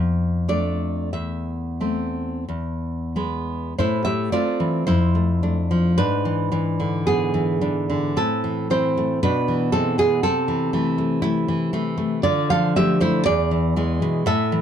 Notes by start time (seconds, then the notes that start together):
Already playing: F2 B5
0.48 A3 D4 D5
1.13 E2 E5
1.81 A3 C4
2.48 E2
3.16 G#3 B3
3.78 A2 E4 C5
4.05 A3 G4 E5
4.32 A3 C4 F4 D5
4.60 E3
4.87 F2 E4 C5
5.15 A3
5.43 A3 D4
5.71 F3
5.97 G#2 D4 B4
6.25 E3
6.52 E3 D4
6.80 D3
7.07 B3 G#4
7.34 E3
7.61 E3 D4
7.90 D3
8.17 A2 C4 A4
8.44 E3
8.70 E3 C4 E4 C5
8.97 A3
9.23 B2 D4 B4
9.48 E3
9.72 E3 G#3 C4 A4
9.98 G#3 B3 G#4
10.23 C3 C4 A4
10.48 E3
10.73 E3 A3
10.98 A3
11.22 A3 E4
11.48 E3
11.73 E3 A3
11.98 A3
12.23 D3 F4 D5
12.50 F3 A4 F5
12.76 F3 A3 G4 E5
13.00 A3 E4 C5
13.26 E2 G#4 D5
13.51 E3
13.76 E3 G#3
14.02 B2
14.26 A2 A4 E5
14.52 E3